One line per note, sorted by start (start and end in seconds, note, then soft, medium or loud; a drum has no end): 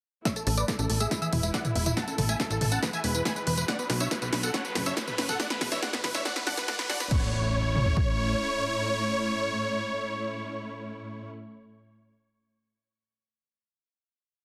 0.25 0.32 A3 medium
0.25 1.10 A3 medium
0.25 1.10 B3 medium
0.25 3.65 E4 medium
0.25 0.33 C#5 medium
0.25 0.33 E5 loud
0.25 0.33 E6 loud
0.25 kick loud
0.25 snare soft
0.25 closed hi-hat medium
0.25 tambourine soft
0.25 riser medium
0.36 0.40 A3 medium
0.36 0.43 A4 medium
0.36 0.43 A5 medium
0.36 closed hi-hat soft
0.36 tambourine soft
0.47 0.65 A1 loud
0.47 0.56 C#4 medium
0.47 0.54 A4 medium
0.47 0.54 A5 medium
0.47 open hi-hat loud
0.57 0.64 A3 medium
0.57 0.65 B4 medium
0.57 0.65 D5 medium
0.57 0.65 D6 medium
0.57 closed hi-hat medium
0.57 tambourine medium
0.68 0.72 A3 medium
0.68 0.75 A4 medium
0.68 0.76 A5 medium
0.68 kick loud
0.68 snare soft
0.68 closed hi-hat medium
0.68 tambourine medium
0.79 0.88 A1 loud
0.79 0.89 C#4 medium
0.79 0.86 A4 medium
0.79 0.86 A5 medium
0.79 closed hi-hat soft
0.79 tambourine soft
0.90 1.07 A1 medium
0.90 0.96 A3 medium
0.90 0.97 A4 medium
0.90 0.97 A5 medium
0.90 open hi-hat medium
1.00 1.04 A3 medium
1.00 1.08 G#4 medium
1.00 1.08 E5 medium
1.00 1.08 E6 medium
1.00 closed hi-hat medium
1.00 tambourine medium
1.11 1.96 E3 medium
1.11 1.21 G#3 medium
1.11 1.18 E4 medium
1.11 1.96 G#4 medium
1.11 1.96 B4 medium
1.11 1.18 E5 medium
1.11 kick loud
1.11 snare medium
1.11 closed hi-hat medium
1.11 tambourine soft
1.22 1.28 E3 medium
1.22 1.29 G#4 medium
1.22 1.29 E5 medium
1.22 1.29 E6 medium
1.22 closed hi-hat soft
1.22 tambourine soft
1.32 1.50 E1 medium
1.32 1.36 E3 medium
1.32 1.40 E4 medium
1.32 1.40 E5 medium
1.32 open hi-hat loud
1.32 mid tom medium
1.43 1.53 G#3 medium
1.43 1.50 E4 medium
1.43 1.50 E5 medium
1.43 closed hi-hat medium
1.43 tambourine medium
1.54 1.60 E3 medium
1.54 1.61 D5 medium
1.54 1.61 F#5 medium
1.54 1.61 F#6 medium
1.54 kick loud
1.54 snare medium
1.54 closed hi-hat medium
1.54 tambourine soft
1.65 1.69 E3 medium
1.65 1.72 E4 medium
1.65 1.72 E5 medium
1.65 closed hi-hat soft
1.65 mid tom medium
1.65 tambourine soft
1.75 1.93 E1 medium
1.75 1.85 G#3 medium
1.75 1.83 E4 medium
1.75 1.83 E5 medium
1.75 open hi-hat medium
1.86 1.93 E3 medium
1.86 1.93 E4 medium
1.86 1.93 E5 medium
1.86 closed hi-hat medium
1.86 mid tom medium
1.86 tambourine medium
1.97 2.01 A3 medium
1.97 2.82 A3 medium
1.97 2.82 B3 medium
1.97 2.04 F#5 medium
1.97 2.04 A5 medium
1.97 2.04 A6 loud
1.97 kick loud
1.97 snare medium
1.97 closed hi-hat medium
1.97 tambourine soft
2.07 2.17 C#4 medium
2.07 2.15 A4 medium
2.07 2.15 A5 medium
2.07 closed hi-hat soft
2.07 tambourine soft
2.18 2.36 A1 loud
2.18 2.25 A3 medium
2.18 2.26 A4 medium
2.18 2.26 A5 medium
2.18 open hi-hat loud
2.18 mid tom medium
2.29 2.33 A3 medium
2.29 2.36 E5 medium
2.29 2.36 G#5 medium
2.29 2.36 G#6 medium
2.29 closed hi-hat medium
2.29 tambourine medium
2.40 2.49 C#4 medium
2.40 2.47 A4 medium
2.40 2.47 A5 medium
2.40 kick loud
2.40 snare medium
2.40 closed hi-hat medium
2.40 tambourine soft
2.50 2.59 A1 loud
2.50 2.57 A3 medium
2.50 2.58 A4 medium
2.50 2.58 A5 medium
2.50 closed hi-hat soft
2.50 tambourine soft
2.61 2.79 A1 medium
2.61 2.65 A3 medium
2.61 2.68 A4 medium
2.61 2.69 A5 medium
2.61 open hi-hat medium
2.61 mid tom medium
2.72 2.81 C#4 medium
2.72 2.79 F#5 medium
2.72 2.79 A5 medium
2.72 2.79 A6 medium
2.72 closed hi-hat medium
2.72 tambourine medium
2.82 2.89 E3 medium
2.82 3.67 E3 medium
2.82 3.67 G#4 medium
2.82 2.90 B4 medium
2.82 3.67 B4 medium
2.82 2.90 B5 medium
2.82 kick loud
2.82 snare medium
2.82 closed hi-hat medium
2.82 tambourine soft
2.93 2.97 E3 medium
2.93 3.01 E5 medium
2.93 3.01 G#5 medium
2.93 3.01 G#6 medium
2.93 closed hi-hat soft
2.93 tambourine soft
3.04 3.22 E1 medium
3.04 3.14 G#3 medium
3.04 3.11 B4 medium
3.04 3.11 B5 medium
3.04 open hi-hat loud
3.15 3.21 E3 medium
3.15 3.22 B4 medium
3.15 3.22 B5 medium
3.15 closed hi-hat medium
3.15 tambourine medium
3.25 3.29 E3 medium
3.25 3.33 G#5 medium
3.25 3.33 B5 medium
3.25 3.33 B6 medium
3.25 kick loud
3.25 snare medium
3.25 closed hi-hat medium
3.25 tambourine medium
3.36 3.46 G#3 medium
3.36 3.43 B4 medium
3.36 3.43 B5 medium
3.36 closed hi-hat soft
3.36 tambourine soft
3.47 3.65 E1 medium
3.47 3.53 E3 medium
3.47 3.54 B4 medium
3.47 3.54 B5 medium
3.47 open hi-hat medium
3.58 3.61 E3 medium
3.58 3.65 B4 medium
3.58 3.65 B5 medium
3.58 closed hi-hat soft
3.58 tambourine medium
3.68 4.53 B3 medium
3.68 4.53 D4 medium
3.68 3.78 D4 medium
3.68 4.53 F#4 medium
3.68 3.76 D5 medium
3.68 3.76 F#5 medium
3.68 3.76 F#6 medium
3.68 kick loud
3.68 snare medium
3.68 closed hi-hat medium
3.68 tambourine soft
3.79 3.85 B3 medium
3.79 3.86 B4 medium
3.79 3.86 B5 medium
3.79 closed hi-hat soft
3.79 tambourine soft
3.90 4.07 B1 loud
3.90 3.94 B3 medium
3.90 3.97 B4 medium
3.90 3.97 B5 medium
3.90 snare medium
3.90 open hi-hat loud
4.00 4.10 D4 medium
4.00 4.08 C#5 medium
4.00 4.08 E5 medium
4.00 4.08 E6 medium
4.00 closed hi-hat medium
4.00 tambourine medium
4.11 4.18 B3 medium
4.11 4.18 B4 medium
4.11 4.18 B5 medium
4.11 kick loud
4.11 snare medium
4.11 closed hi-hat soft
4.11 tambourine soft
4.22 4.31 B1 loud
4.22 4.26 B3 medium
4.22 4.29 B4 medium
4.22 4.29 B5 medium
4.22 closed hi-hat soft
4.22 tambourine soft
4.33 4.50 B1 medium
4.33 4.42 D4 medium
4.33 4.40 B4 medium
4.33 4.40 B5 medium
4.33 snare medium
4.33 open hi-hat loud
4.43 4.50 B3 medium
4.43 4.51 A4 medium
4.43 4.51 F#5 medium
4.43 4.51 F#6 medium
4.43 closed hi-hat soft
4.43 tambourine medium
4.54 5.39 F#3 medium
4.54 4.64 C#4 medium
4.54 5.39 C#4 medium
4.54 6.24 G#4 medium
4.54 5.39 A4 medium
4.54 4.61 C#5 medium
4.54 4.61 F#5 medium
4.54 4.61 F#6 loud
4.54 kick loud
4.54 snare medium
4.54 closed hi-hat medium
4.54 tambourine soft
4.65 4.71 B3 medium
4.65 4.72 B4 medium
4.65 4.72 B5 medium
4.65 closed hi-hat soft
4.65 tambourine soft
4.75 4.93 F#1 medium
4.75 4.79 B3 medium
4.75 4.83 B4 medium
4.75 4.83 B5 medium
4.75 snare medium
4.75 open hi-hat loud
4.75 mid tom medium
4.86 4.96 C#4 medium
4.86 4.93 C#5 medium
4.86 4.93 E5 medium
4.86 4.93 E6 medium
4.86 closed hi-hat medium
4.86 tambourine medium
4.97 5.03 B3 medium
4.97 5.04 B4 medium
4.97 5.04 B5 medium
4.97 kick loud
4.97 snare medium
4.97 closed hi-hat medium
4.97 tambourine medium
5.08 5.11 B3 medium
5.08 5.15 B4 medium
5.08 5.15 B5 medium
5.08 closed hi-hat soft
5.08 mid tom medium
5.08 tambourine soft
5.18 5.36 F#1 medium
5.18 5.28 C#4 medium
5.18 5.26 B4 medium
5.18 5.26 B5 medium
5.18 snare medium
5.18 open hi-hat loud
5.29 5.35 B3 medium
5.29 5.36 A4 medium
5.29 5.36 F#5 medium
5.29 5.36 F#6 medium
5.29 closed hi-hat soft
5.29 mid tom medium
5.29 tambourine medium
5.40 6.25 E3 medium
5.40 5.49 D4 medium
5.40 6.25 E4 medium
5.40 6.25 B4 medium
5.40 5.47 D5 medium
5.40 5.47 F#5 loud
5.40 5.47 F#6 loud
5.40 kick loud
5.40 snare medium
5.40 closed hi-hat medium
5.40 tambourine medium
5.50 5.57 B3 medium
5.50 5.58 B4 medium
5.50 5.58 B5 medium
5.50 snare medium
5.50 closed hi-hat soft
5.50 tambourine soft
5.61 5.79 E1 loud
5.61 5.65 B3 medium
5.61 5.68 B4 medium
5.61 5.68 B5 medium
5.61 snare medium
5.61 open hi-hat loud
5.61 mid tom medium
5.72 5.81 D4 medium
5.72 5.79 C#5 medium
5.72 5.79 E5 medium
5.72 5.79 E6 medium
5.72 snare medium
5.72 closed hi-hat soft
5.72 tambourine medium
5.82 5.92 D4 medium
5.82 5.90 D5 medium
5.82 5.90 F#5 loud
5.82 5.90 F#6 loud
5.82 kick loud
5.82 snare loud
5.82 closed hi-hat soft
5.82 tambourine soft
5.93 6.02 E1 loud
5.93 6.00 B3 medium
5.93 6.00 B4 medium
5.93 6.00 B5 medium
5.93 snare medium
5.93 closed hi-hat soft
5.93 tambourine soft
6.04 6.22 E1 medium
6.04 6.08 B3 medium
6.04 6.11 B4 medium
6.04 6.11 B5 medium
6.04 snare loud
6.04 open hi-hat medium
6.04 mid tom medium
6.15 6.24 D4 medium
6.15 6.22 C#5 medium
6.15 6.22 E5 loud
6.15 6.22 E6 medium
6.15 snare medium
6.15 closed hi-hat soft
6.15 tambourine medium
6.25 7.10 A3 medium
6.25 6.35 D4 medium
6.25 7.10 D4 medium
6.25 7.10 F#4 medium
6.25 6.33 D5 medium
6.25 6.33 F#5 loud
6.25 6.33 F#6 loud
6.25 kick loud
6.25 snare loud
6.25 closed hi-hat medium
6.25 tambourine medium
6.36 6.42 B3 medium
6.36 6.43 B4 medium
6.36 6.43 B5 medium
6.36 snare medium
6.36 closed hi-hat soft
6.36 tambourine soft
6.47 6.64 F#1 medium
6.47 6.56 D4 medium
6.47 6.54 D5 medium
6.47 6.54 F#5 loud
6.47 6.54 F#6 loud
6.47 snare loud
6.47 open hi-hat loud
6.57 6.64 B3 medium
6.57 6.65 B4 medium
6.57 6.65 B5 medium
6.57 snare medium
6.57 closed hi-hat medium
6.57 tambourine medium
6.68 6.78 D4 medium
6.68 6.75 D5 medium
6.68 6.75 F#5 loud
6.68 6.75 F#6 loud
6.68 kick loud
6.68 snare loud
6.68 closed hi-hat soft
6.68 tambourine medium
6.79 6.85 B3 medium
6.79 6.86 B4 medium
6.79 6.86 B5 medium
6.79 snare medium
6.79 closed hi-hat soft
6.79 tambourine soft
6.89 7.07 F#1 medium
6.89 6.99 D4 medium
6.89 6.97 D5 medium
6.89 6.97 F#5 loud
6.89 6.97 F#6 loud
6.89 snare loud
6.89 open hi-hat loud
7.00 7.07 B3 medium
7.00 7.07 B4 medium
7.00 7.08 B5 medium
7.00 snare medium
7.00 closed hi-hat soft
7.00 tambourine medium
7.11 8.36 A1 medium
7.11 11.30 A2 medium
7.11 7.31 A3 medium
7.11 11.30 A3 medium
7.11 11.30 C#4 medium
7.11 11.30 E4 medium
7.11 11.30 C#5 loud
7.11 11.96 C#6 medium
7.11 kick loud
7.11 crash medium
7.11 impact medium
7.75 mid tom medium
7.86 floor tom medium
7.97 kick medium